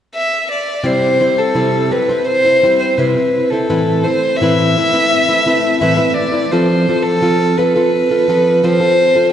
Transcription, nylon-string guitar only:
0.84 C3 G3 C4 E4 C5
1.20 G3 C4 E4 C5
1.55 C3 G3 C4 E4 C5
1.91 G3 C4 E4 C5
2.09 C4 E4 C5
2.45 C4 E4 C5
2.63 G3 C4 E4 C5
2.98 C3 G3 C4 E4 C5
3.17 C4 E4
3.52 C4 E4 C5
3.69 A2 E3 A3 C4 E4 B4
4.04 A3 C4 E4
4.41 A2 E3 A3 C4 E4 B4
4.77 A3 C4 E4 B4
4.93 A3 C4 E4 B4
5.29 A3 C4 E4 B4
5.46 A3 C4 E4 B4
5.81 A2 E3 A3 C4 E4 B4
5.97 A3 C4 E4 B4
6.32 A3 C4 E4 B4
6.52 F3 C4 F4 A4
6.88 F3 C4 F4 A4
7.22 F3 C4 F4 A4
7.58 F3 C4 F4 A4
7.76 C4 F4 A4
8.11 C4 F4 A4
8.28 F3 C4 F4 A4
8.64 F3 C4 F4 A4
8.80 C4 F4 A4
9.15 C4 F4 A4

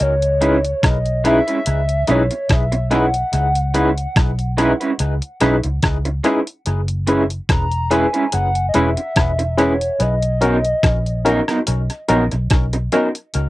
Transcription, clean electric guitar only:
0.41 G#3 C#4 E4 B4
1.24 G#3 C#4 E4 B4
1.47 G#3 C#4 E4 B4
2.08 G#3 C#4 E4 B4
2.31 muted clean electric guitar stroke
2.72 muted clean electric guitar stroke
2.91 G#3 C#4 E4 B4
3.74 G#3 C#4 E4 B4
4.57 G#3 C#4 E4 B4
4.81 G#3 C#4 E4 B4
5.41 G#3 C#4 E4 B4
5.64 muted clean electric guitar stroke
6.05 muted clean electric guitar stroke
6.24 G#3 C#4 E4 B4
7.07 G#3 C#4 E4 B4
7.91 G#3 C#4 E4 B4
8.13 G#3 C#4 E4 B4
8.74 G#3 C#4 E4 B4
8.97 muted clean electric guitar stroke
9.39 muted clean electric guitar stroke
9.58 G#3 C#4 E4 B4
10.41 F#3 B3 D#4 A#4
11.25 F#3 B3 D#4 A#4
11.48 F#3 B3 D#4 A#4
12.09 F#3 B3 D#4 A#4
12.32 muted clean electric guitar stroke
12.73 muted clean electric guitar stroke
12.92 F#3 B3 D#4 A#4

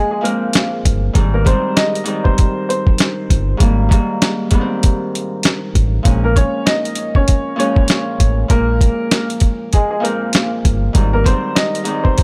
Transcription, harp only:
Already playing: A#2 F3 G#3 A#3 C#4
0.21 A#2 F3 G#3 C4
1.13 G#2 D#3 G3
1.17 C4
1.45 G#2 D#3 G3 C4
2.04 G#2 D#3 G3 C4
3.57 G#2 D#3 G3
3.61 A#3
3.89 G#2 D#3 G3 A#3
4.50 G#2 D#3 G3
4.55 B3
4.61 C4
6.03 A#2 F3 G#3
6.07 C#4
7.56 A#2 F3 G#3 C#4
8.48 A#2 F3 G#3 A#3
10.00 A#2 F3 G#3
10.04 C4
10.93 G#2 D#3 G3
10.97 C4
11.24 G#2 D#3 G3
11.28 C4
11.84 G#2 D#3 G3
11.88 C4

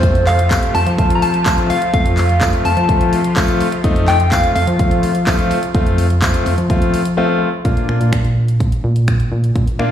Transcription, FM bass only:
Already playing: F2
0.75 F2
0.86 F3
1.94 F2
2.65 F2
2.77 F3
3.84 F2
4.56 F2
4.67 F3
5.75 F2
6.46 F2
6.58 F3
7.65 A#2
7.89 A#2
8.01 A#2
8.84 A#2
9.32 A#2
9.56 A#2
9.79 A#2

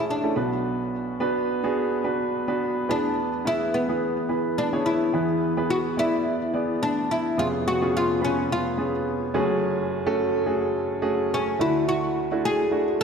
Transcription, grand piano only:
Already playing: A1 A2 A3 C#4 E4 G#4 A4
0.23 A3 C#4 E4 A4
0.36 B1 B2 B3 D4 F#4 B4
1.20 B3 D4 F#4 B4
1.64 B3 D4 F#4 G#4
2.04 B3 D4 F#4 B4
2.48 B3 D4 F#4 B4
2.89 E2 E3 B3 E4 G#4 B4
3.45 B3 E4 G#4 B4
3.89 B3 E4 G#4 B4
4.29 B3 E4 G#4 B4
4.73 B3 E4 G#4 C#5
5.13 E2 E3 B3 E4 G#4 B4
5.57 B3 E4 G#4 B4
5.97 B3 E4 G#4 D5
6.54 B3 E4 G#4 D5
7.38 F1 F2 B3 C#4 F4 G#4
7.82 B3 C#4 F4 G#4
8.21 B3 C#4 F4 B4
8.78 B3 C#4 F4 G#4
9.34 F#1 F#2 A3 C#4 F#4 G#4
10.06 A3 C#4 F#4 A4
10.46 A3 C#4 F#4 G#4
11.02 A3 C#4 F#4 G#4
11.59 D2 D3 A3 D4 E4 F#4
12.32 A3 D4 E4 F#4
12.71 A3 D4 E4 F#4

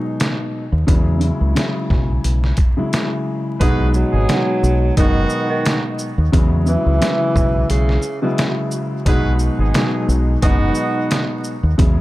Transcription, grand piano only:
Already playing: B2 F#3 G#3 D#4
0.87 C#3 F#3 G#3 E4
1.20 C#3 F#3 G#3 E4
1.55 C#3 F#3 G#3 E4
2.77 C#3 F#3 G#3 E4
3.60 B2 F#3 G#3 D#4
4.28 B2 F#3 G#3 D#4
4.97 B2 F#3 G#3 D#4
6.32 C#3 F#3 G#3 E4
6.65 C#3 F#3 G#3 E4
7.01 C#3 F#3 G#3 E4
8.22 C#3 F#3 G#3 E4
9.05 B2 F#3 G#3 D#4
9.74 B2 F#3 G#3 D#4
10.43 B2 F#3 G#3 D#4
11.78 C#3 F#3 G#3 E4

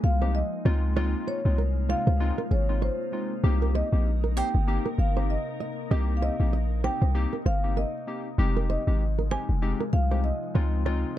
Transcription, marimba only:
0.04 F5
0.35 D#5
1.28 C#5
1.90 F5
2.52 C#5
2.82 C5
3.75 D#5
4.38 G5
4.99 F5
5.30 D#5
6.17 F5
6.23 D#5
6.84 G5
7.46 F5
7.77 D#5
8.70 D#5
9.31 G#5
9.93 F5
10.24 D#5

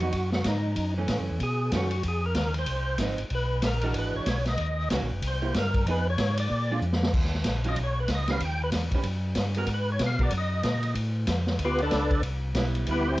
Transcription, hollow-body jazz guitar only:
0.02 F#3 B3 D#4
0.98 E3 A3 C#4
1.74 D#3 A3 C#4
3.01 F3 C4 D#4
3.83 E3 G#3 D4 F#4
4.92 D#3 A#3 C#4 F#4
5.42 A#3 E4 G4
5.88 F3 B3 D#4 G#4
6.71 G#3 D4 F4
7.64 D#3 F#3 C#4 F4
8.30 D#3 C#4 G4 B4
8.94 D#3 C#4 G4 B4
9.57 G#3 B3 F#4 A#4
10.20 G#3 B3 F#4 A#4
12.56 G3 B3 E4
12.87 G3 B3 E4

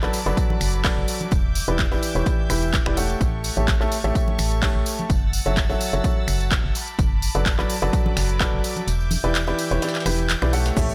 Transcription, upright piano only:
0.03 F#3 F#4 A4 B4 D5
0.26 F#3 F#4 A4 B4 D5
0.84 F#3 F#4 A4 B4 D5
1.68 E3 E4 G4 B4 D5
1.92 E3 E4 G4 B4 D5
2.15 E3 E4 G4 B4 C#5
2.26 E3 E4 G4 B4
2.50 E3 E4 G4 B4 E5
2.86 E3 E4 G4 B4 D5
2.97 A3 G4 A4 C#5 F#5
3.57 A3 G4 A4 C#5 E5
3.81 A3 G4 A4 C#5 E5
4.04 A3 G4 A4 C#5 E5
4.62 A3 G4 A4 C#5 E5
5.46 F#3 F#4 A4 C#5 E5
5.70 F#3 F#4 A4 C#5 E5
5.93 F#3 F#4 A4 C#5 E5
6.04 F#3 F#4 A4 C#5 E5
7.35 F#3 F#4 A4 B4 D5
7.59 F#3 F#4 A4 B4 D5
7.82 F#3 F#4 A4 B4 D5
8.40 F#3 F#4 A4 B4 D5
9.24 E3 E4 G4 B4 D5
9.48 E3 E4 G4 B4 D5
9.71 E3 E4 G4 B4 C#5
9.82 E3 E4 G4 B4 D5
10.06 E3 E4 G4 B4 E5
10.42 E3 E4 G4 B4 D5
10.53 A3 G4 A4 C#5 F#5
10.77 A3 G4 A4 C#5 E5

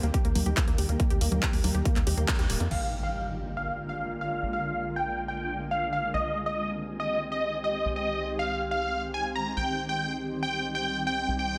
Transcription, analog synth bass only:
0.03 D#2
0.25 D#2
0.35 D#2
0.46 D#2
0.68 D#2
0.78 D#2
0.89 D#2
1.10 D#2
1.21 D#2
1.32 D#2
1.53 D#2
1.64 D#2
1.75 D#2
1.96 D#2
2.07 D#2
2.17 D#2
2.39 D#2
2.50 D#1
2.60 F2
2.71 A#1
4.43 A#1
6.14 C2
7.85 C2
9.57 C2
11.28 C2

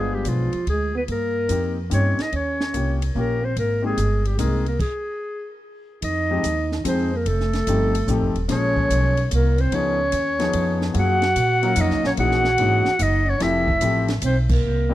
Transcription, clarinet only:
Already playing: G#4
0.14 G4
0.28 F4
0.69 G#4
0.97 B4
1.12 A#4
1.94 C#5
2.22 D#5
2.36 C#5
3.18 A#4
3.44 C5
3.59 A#4
3.86 G#4
4.26 G4
4.39 G#4
4.68 A#4
4.81 G#4
6.04 D#5
6.88 C5
7.16 A#4
7.28 A4
8.51 C#5
9.34 A#4
9.61 C5
9.75 C#5
10.99 F#5
11.81 D#5
12.07 C#5
12.20 F#5
13.02 D#5
13.29 C#5
13.42 E5
14.26 C5
14.53 A#4

